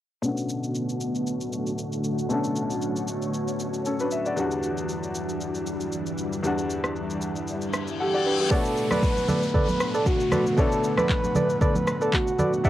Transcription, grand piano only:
0.22 B2 A3 C#4 D4
0.26 F#4
2.29 B2 A3 C#4 D4
2.33 A4
3.86 C#4 A4
4.00 D4 B4
4.12 E5
4.26 F#4 D5
4.36 E2 G3 B3 D4
4.40 F#4
6.43 E2 G3 B3 D4
6.47 F#4
8.00 A4 F#5
8.14 F#4 D5
8.26 D4 B4
8.40 B3 G4
8.50 B2 A3 D4 C#5
8.54 F#4
10.57 B2 A3 D4 C#5
10.61 A4
12.63 E2 G3 B3 D4

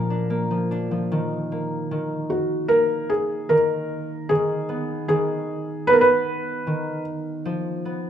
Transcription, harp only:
Already playing: A#2 F3 A#3
0.10 D4
0.30 A#3
0.51 F3
0.71 D4
0.91 F3
1.12 D#3
1.52 A#3
1.91 D#3
2.71 A#3
3.50 D#3
4.30 D#3
4.69 B3
5.09 D#3
5.88 B3
6.67 D#3
7.45 F3
7.85 B3

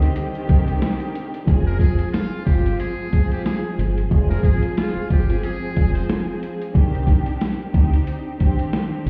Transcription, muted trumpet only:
1.67 A#4
1.80 G#4
2.12 F4
2.45 G4
2.80 G#4
3.32 G4
3.45 G#4
4.29 A#4
4.44 G#4
4.78 F4
5.13 G4
5.45 G#4
5.94 C5

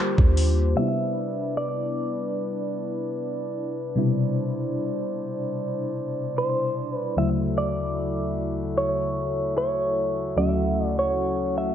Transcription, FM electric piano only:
Already playing: G3 A#3 D4 F4 G4
0.76 C3 G3 B3 D4 E4
3.96 B2 C3 G3 D4 E4
7.16 D2 C#3 F#3 A3 E4
10.36 D2 F#3 A3 C#4 F#4

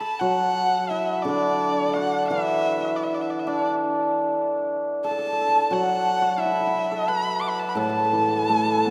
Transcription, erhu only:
0.00 A5
0.20 F#5
0.89 E5
1.22 D5
1.94 F#5
2.28 E5
2.96 D5
3.03 E5
3.15 D5
3.21 E5
3.30 D5
3.39 E5
3.48 D5
5.05 A5
5.73 F#5
6.39 E5
7.08 B5
7.41 D6
7.49 B5
7.59 A5
7.69 B5
7.78 A5

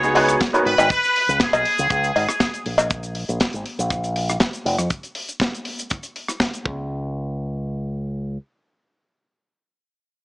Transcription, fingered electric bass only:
Already playing: C#2
0.66 G#1
0.79 G#1
1.29 C#2
1.54 B1
1.79 C#2
1.90 C#2
2.16 G#1
2.66 A#1
3.29 A#1
3.54 G#1
3.79 A#1
4.66 F1
4.78 F2
6.65 C#2

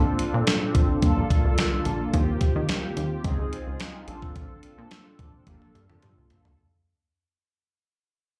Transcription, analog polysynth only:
Already playing: C4 D4 F4 A4
1.01 A#3 D4 F4 A4
2.13 A#3 C4 F4 G4
3.24 C4 D#4 F4 G#4
4.07 C4 D4 F4 A4
5.46 A#3 D4 F4 G4
5.54 A4

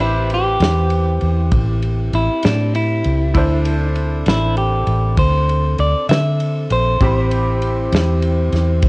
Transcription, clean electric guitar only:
0.01 E4
0.34 G4
2.15 E4
2.45 D4
2.76 E4
4.29 E4
4.58 G4
5.19 C5
5.80 D5
6.09 E5
6.72 C5

